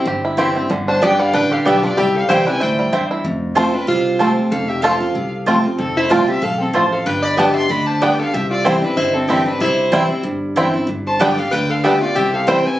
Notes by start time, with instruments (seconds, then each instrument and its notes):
Already playing: five-string banjo C4 E4
0.05 upright bass G1, steel-string acoustic guitar G2, five-string banjo G4
0.25 five-string banjo E4
0.37 steel-string acoustic guitar E3 G3 C4 E4, mandolin C4 E4 C5 G5, five-string banjo G4
0.55 five-string banjo C4, steel-string acoustic guitar C4 E4
0.70 upright bass G1, steel-string acoustic guitar G2, five-string banjo D3
0.88 five-string banjo D4, resonator guitar played with a steel bar C5, fiddle A5
1.01 steel-string acoustic guitar D3 G3 B3 G4, mandolin B3 G4 D5 G5, five-string banjo G4, resonator guitar played with a steel bar B4, fiddle G5
1.20 five-string banjo G3, resonator guitar played with a steel bar A4, fiddle F5
1.34 upright bass A1, steel-string acoustic guitar D3, five-string banjo D4, resonator guitar played with a steel bar B4, fiddle G5
1.51 five-string banjo G4, resonator guitar played with a steel bar A4, fiddle F5
1.65 upright bass B1, steel-string acoustic guitar D3 G3 B3 G4, five-string banjo G3, mandolin B3 G4 D5 G5, resonator guitar played with a steel bar G4, fiddle E5
1.83 steel-string acoustic guitar B3 G4, five-string banjo D4, resonator guitar played with a steel bar F4, fiddle D5
1.97 upright bass C2, steel-string acoustic guitar C3, five-string banjo G3, resonator guitar played with a steel bar G4, fiddle E5
2.15 resonator guitar played with a steel bar A4, fiddle F5
2.29 upright bass C2, steel-string acoustic guitar E3 G3 C4 E4, mandolin C4 E4 C5 G5, five-string banjo G4, resonator guitar played with a steel bar C5, fiddle G5
2.46 five-string banjo G3, steel-string acoustic guitar C4 E4, resonator guitar played with a steel bar B4, fiddle G#5
2.60 upright bass D2, steel-string acoustic guitar A2, five-string banjo E4, resonator guitar played with a steel bar C5, fiddle G5
2.79 five-string banjo G3
2.92 upright bass E2, steel-string acoustic guitar G2, mandolin C4 E4 C5 G5, five-string banjo C4
3.11 five-string banjo E4
3.24 upright bass F1, steel-string acoustic guitar F2
3.55 steel-string acoustic guitar F3 A3 C4 F4, five-string banjo A3 C4 F4, mandolin C4 F4 C5 A5, resonator guitar played with a steel bar F4, fiddle C5
3.74 steel-string acoustic guitar C4 F4, resonator guitar played with a steel bar D4, fiddle B4
3.87 upright bass C2, steel-string acoustic guitar C3, resonator guitar played with a steel bar F4, fiddle C5
4.19 steel-string acoustic guitar F3 A3 C4 F4, five-string banjo A3 C4 F4, mandolin C4 F4 C5 A5
4.51 upright bass F1, steel-string acoustic guitar F2, resonator guitar played with a steel bar A4, fiddle F5
4.68 resonator guitar played with a steel bar G4, fiddle E5
4.81 steel-string acoustic guitar F3 A3 C4 F4, five-string banjo A3 C4, mandolin C4 F4 C5 A5, resonator guitar played with a steel bar A4, fiddle F5
4.85 five-string banjo F4
5.00 steel-string acoustic guitar C4 F4
5.15 upright bass C2, steel-string acoustic guitar C3
5.46 steel-string acoustic guitar F3 A3 C4 F4, five-string banjo A3 C4 F4, mandolin C4 F4 C5 A5
5.64 steel-string acoustic guitar C4 F4
5.78 upright bass F1, steel-string acoustic guitar F2, resonator guitar played with a steel bar C4, fiddle A4
5.97 resonator guitar played with a steel bar E4, fiddle C5
6.09 upright bass C2, steel-string acoustic guitar F3 A3 C4 F4, five-string banjo A3 C4 F4, mandolin C4 F4 C5 A5, resonator guitar played with a steel bar F4, fiddle D5
6.28 steel-string acoustic guitar C4 F4, resonator guitar played with a steel bar G4, fiddle E5
6.42 upright bass B1, steel-string acoustic guitar E2, resonator guitar played with a steel bar A4, fiddle F5
6.60 resonator guitar played with a steel bar C4, fiddle A4
6.73 upright bass A1, steel-string acoustic guitar F2, five-string banjo A3 C4 F4, mandolin C4 F4 C5 A5, resonator guitar played with a steel bar F4, fiddle C5
6.92 resonator guitar played with a steel bar A4, fiddle F5
7.06 upright bass G1, steel-string acoustic guitar G2, resonator guitar played with a steel bar B4, fiddle G5
7.22 resonator guitar played with a steel bar D5, fiddle B5
7.37 steel-string acoustic guitar D3 G3 B3 G4, five-string banjo G3 B3 D4, mandolin B3 G4 D5 G5, resonator guitar played with a steel bar D5, fiddle A5
7.54 resonator guitar played with a steel bar E5, fiddle C6
7.69 upright bass D2, steel-string acoustic guitar D3, resonator guitar played with a steel bar D5, fiddle B5
7.86 resonator guitar played with a steel bar C5, fiddle A5
8.01 steel-string acoustic guitar D3 G3 B3 G4, five-string banjo G3 B3 D4, mandolin B3 G4 D5 G5, resonator guitar played with a steel bar B4, fiddle G5
8.19 resonator guitar played with a steel bar A4, fiddle F5
8.33 upright bass C2, steel-string acoustic guitar C3, resonator guitar played with a steel bar G4, fiddle E5
8.50 resonator guitar played with a steel bar F4, fiddle D5
8.64 steel-string acoustic guitar E3 G3 C4 E4, five-string banjo G3 C4 E4, mandolin C4 E4 C5 G5, resonator guitar played with a steel bar E4, fiddle C5
8.82 steel-string acoustic guitar C4 E4, resonator guitar played with a steel bar D4, fiddle B4
8.96 upright bass G1, steel-string acoustic guitar G2, resonator guitar played with a steel bar E4, fiddle C5
9.14 resonator guitar played with a steel bar C4, fiddle A4
9.28 steel-string acoustic guitar E3 G3 C4 E4, five-string banjo G3 C4 E4, mandolin C4 E4 C5 G5, resonator guitar played with a steel bar C4, fiddle G4
9.46 steel-string acoustic guitar C4 E4, resonator guitar played with a steel bar D4, fiddle B4
9.60 upright bass C2, steel-string acoustic guitar C3, resonator guitar played with a steel bar E4, fiddle C5
9.92 steel-string acoustic guitar E3 G3 C4 E4, five-string banjo G3 C4 E4, mandolin C4 E4 C5 G5
10.09 steel-string acoustic guitar C4 E4
10.23 upright bass G1, steel-string acoustic guitar G2
10.56 steel-string acoustic guitar E3 G3 C4 E4, five-string banjo G3 C4 E4, mandolin C4 E4 C5 G5
10.74 steel-string acoustic guitar C4 E4
10.87 upright bass G1, steel-string acoustic guitar G2
11.07 resonator guitar played with a steel bar C5, fiddle A5
11.19 steel-string acoustic guitar D3 G3 B3 G4, five-string banjo G3 B3 D4, mandolin B3 G4 D5 G5, resonator guitar played with a steel bar B4, fiddle G5
11.38 steel-string acoustic guitar B3 G4, resonator guitar played with a steel bar A4, fiddle F5
11.51 upright bass D2, steel-string acoustic guitar D3, resonator guitar played with a steel bar B4, fiddle G5
11.70 resonator guitar played with a steel bar A4, fiddle F5
11.83 steel-string acoustic guitar D3 G3 B3 G4, five-string banjo G3 B3 D4, mandolin B3 G4 D5 G5, resonator guitar played with a steel bar G4, fiddle E5
12.01 steel-string acoustic guitar B3 G4, resonator guitar played with a steel bar F4, fiddle D5
12.15 upright bass C2, steel-string acoustic guitar C3, resonator guitar played with a steel bar G4, fiddle E5
12.33 resonator guitar played with a steel bar A4, fiddle F5
12.47 steel-string acoustic guitar E3 G3 C4 E4, five-string banjo G3 C4 E4, mandolin C4 E4 C5 G5, resonator guitar played with a steel bar C5, fiddle G5
12.64 steel-string acoustic guitar C4 E4, resonator guitar played with a steel bar B4, fiddle G#5